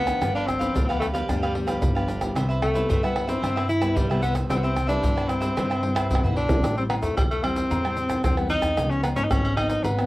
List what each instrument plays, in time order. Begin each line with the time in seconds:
Already playing: upright bass D2, nylon-string guitar A2, tenor saxophone B3, cavaquinho D4 A4 C5 F5
0.06 nylon-string guitar F3 B3 D4, pandeiro, tamborim, shaker, surdo
0.21 upright bass G1, nylon-string guitar G2, cavaquinho D4 G4 B4 F5, pandeiro, tamborim, shaker, surdo
0.35 tenor saxophone D4, cavaquinho G4 B4 F5, pandeiro, shaker
0.47 tenor saxophone C4, muted cavaquinho stroke, pandeiro, tamborim, shaker, surdo
0.59 nylon-string guitar F3 B3 D4, cavaquinho G4 B4 F5, pandeiro, shaker, surdo
0.74 upright bass D2, nylon-string guitar D3, cavaquinho D4 G4 B4 F5, pandeiro, shaker, surdo
0.84 tenor saxophone B3 C4
0.89 nylon-string guitar F3 B3 D4, cavaquinho G4 B4 F5, pandeiro, tamborim, shaker
1.00 tenor saxophone A3, pandeiro, tamborim, shaker
1.13 nylon-string guitar F3 B3 D4, tenor saxophone G3, cavaquinho G4 B4 F5, pandeiro, shaker
1.28 upright bass D2, nylon-string guitar G2 F3 B3 D4, cavaquinho D4 G4 B4 F5, pandeiro, tamborim, shaker, surdo
1.42 cavaquinho G4 B4 F5, pandeiro, tamborim, shaker
1.54 nylon-string guitar F3 B3 D4, muted cavaquinho stroke, pandeiro
1.67 cavaquinho G4 B4 F5, pandeiro, tamborim, shaker, surdo
1.82 upright bass G1, nylon-string guitar D3, pandeiro, shaker, surdo
1.95 nylon-string guitar F3 B3 D4, cavaquinho G4 B4 F5, pandeiro, tamborim, shaker
2.07 cavaquinho D4 G4 B4 F5, pandeiro, shaker, surdo
2.21 nylon-string guitar G3 B3 E4, pandeiro, tamborim, shaker, surdo
2.35 upright bass C2, nylon-string guitar C3, cavaquinho G4 B4 C5 E5, pandeiro, tamborim, shaker, surdo
2.49 cavaquinho B4 C5 E5, pandeiro, shaker
2.62 tenor saxophone A3, muted cavaquinho stroke, pandeiro, tamborim, surdo
2.74 nylon-string guitar G3 B3 E4, cavaquinho B4 C5 E5, pandeiro, shaker, surdo
2.88 nylon-string guitar G2, upright bass G2, cavaquinho G4 B4 C5 E5, pandeiro, shaker, surdo
3.03 nylon-string guitar G3 B3 E4, tenor saxophone B3, cavaquinho B4 C5 E5, pandeiro, tamborim, shaker
3.16 pandeiro, tamborim
3.27 nylon-string guitar G3 B3 E4, tenor saxophone C4, cavaquinho B4 C5 E5, pandeiro, shaker
3.42 upright bass G2, nylon-string guitar C3 G3 B3 E4, cavaquinho G4 B4 C5 E5, pandeiro, tamborim, shaker, surdo
3.56 cavaquinho B4 C5 E5, pandeiro, tamborim, shaker
3.69 tenor saxophone E4, muted cavaquinho stroke, pandeiro, shaker
3.81 nylon-string guitar G3 B3 E4, cavaquinho B4 C5 E5, pandeiro, tamborim, shaker, surdo
3.96 upright bass C2, nylon-string guitar G2, tenor saxophone G3, pandeiro, shaker, surdo
4.09 nylon-string guitar G3 B3 E4, tenor saxophone G3, cavaquinho B4 C5 E5, pandeiro, tamborim, shaker
4.22 tenor saxophone B3, cavaquinho G4 B4 C5 E5, pandeiro, shaker, surdo
4.35 pandeiro, tamborim, shaker, surdo
4.49 upright bass C2, nylon-string guitar C3 G3 B3 E4, tenor saxophone C4, cavaquinho G4 B4 C5 E5, pandeiro, tamborim, shaker, surdo
4.56 tenor saxophone B3
4.63 tenor saxophone C4, cavaquinho B4 C5 E5, pandeiro, shaker
4.75 muted cavaquinho stroke, pandeiro, tamborim, shaker, surdo
4.87 nylon-string guitar G3 B3 E4, tenor saxophone D4, cavaquinho B4 C5 E5, pandeiro, shaker, surdo
5.02 upright bass G2, nylon-string guitar G2, cavaquinho G4 B4 C5 E5, pandeiro, shaker, surdo
5.15 nylon-string guitar G3 B3 E4, cavaquinho B4 C5 E5, pandeiro, tamborim, shaker
5.29 tenor saxophone C4, pandeiro, tamborim, shaker
5.40 nylon-string guitar G3 B3 E4, cavaquinho B4 C5 E5, pandeiro, shaker
5.56 upright bass G2, nylon-string guitar C3 G3 B3 E4, cavaquinho G4 B4 C5 E5, pandeiro, tamborim, shaker, surdo
5.70 cavaquinho B4 C5 E5, pandeiro, tamborim, shaker
5.82 nylon-string guitar G3 B3 E4, muted cavaquinho stroke, pandeiro
5.95 cavaquinho B4 C5 E5, pandeiro, tamborim, shaker, surdo
6.09 upright bass B1, nylon-string guitar G2, tenor saxophone C4, pandeiro, shaker, surdo
6.15 tamborim
6.23 nylon-string guitar G3 B3 E4, tenor saxophone B3, cavaquinho B4 C5 E5, surdo, pandeiro, shaker
6.33 cavaquinho G4, surdo, pandeiro
6.36 tenor saxophone D4, cavaquinho B4 C5 E5, surdo
6.49 nylon-string guitar G3 C4 E4, pandeiro, shaker, surdo
6.60 surdo
6.64 upright bass A1, nylon-string guitar A2, pandeiro, tamborim, shaker, surdo
6.77 nylon-string guitar G3 C4 E4, tenor saxophone C4, pandeiro, shaker
6.90 nylon-string guitar G3 C4 E4, tenor saxophone B3, pandeiro, tamborim, low agogo
7.02 upright bass E2, tenor saxophone A3, pandeiro, shaker, surdo
7.17 upright bass E2, nylon-string guitar E3, tenor saxophone G3, pandeiro, tamborim, high agogo, shaker, surdo
7.31 tenor saxophone A3, pandeiro, high agogo, shaker
7.43 nylon-string guitar G3 C4 E4, tenor saxophone C4, pandeiro, tamborim, high agogo
7.56 pandeiro, shaker, surdo
7.71 upright bass E2, nylon-string guitar A2, pandeiro, low agogo, shaker, surdo
7.84 nylon-string guitar G3 C4 E4, pandeiro, tamborim, shaker
7.97 pandeiro, shaker
8.10 pandeiro, tamborim, shaker, surdo
8.24 upright bass E2, nylon-string guitar E3, tenor saxophone C4, pandeiro, tamborim, shaker, surdo
8.37 nylon-string guitar G3 C4 E4, tenor saxophone B3, pandeiro, tamborim, shaker
8.50 tenor saxophone D#4, pandeiro, high agogo, shaker
8.62 upright bass E2, pandeiro, tamborim, shaker, surdo
8.77 upright bass C#2, nylon-string guitar C#3 F3 B3 D#4, pandeiro, tamborim, shaker, surdo
8.91 tenor saxophone C#4, pandeiro, shaker
9.03 nylon-string guitar F3 B3 D#4, tenor saxophone B3, pandeiro, tamborim, low agogo, shaker
9.16 upright bass G#1, tenor saxophone C#4, pandeiro, shaker, surdo
9.24 tenor saxophone D#4
9.30 upright bass G#1, nylon-string guitar G#2, tenor saxophone C#4, pandeiro, tamborim, high agogo, shaker, surdo
9.45 pandeiro, high agogo, shaker
9.57 nylon-string guitar F3 B3 D#4, tenor saxophone D#4, pandeiro, tamborim, high agogo
9.69 tenor saxophone D#4, pandeiro, shaker, surdo
9.84 upright bass G#1, nylon-string guitar C#3, tenor saxophone B3, pandeiro, low agogo, shaker, surdo
9.98 nylon-string guitar F3 B3 D#4, pandeiro, tamborim, shaker